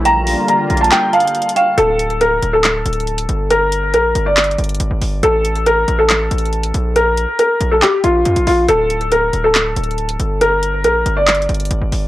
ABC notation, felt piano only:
X:1
M:4/4
L:1/16
Q:1/4=139
K:Dm
V:1 name="Felt piano"
b4 b3 a g2 f4 f2 | A4 B3 A8- A | B4 B3 d8- d | A4 B3 A8- A |
B4 B3 A G2 F4 F2 | A4 B3 A8- A | B4 B3 d8- d |]